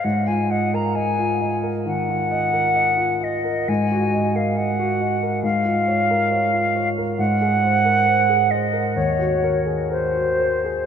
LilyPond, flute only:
\new Staff \with { instrumentName = "Flute" } { \time 4/4 \key aes \mixolydian \tempo 4 = 67 ges''16 aes''16 ges''16 bes''16 aes''8. r16 ges''4. ees''8 | aes''8. f''16 ges''4 f''2 | ges''4. ees''8 des''8. r16 c''4 | }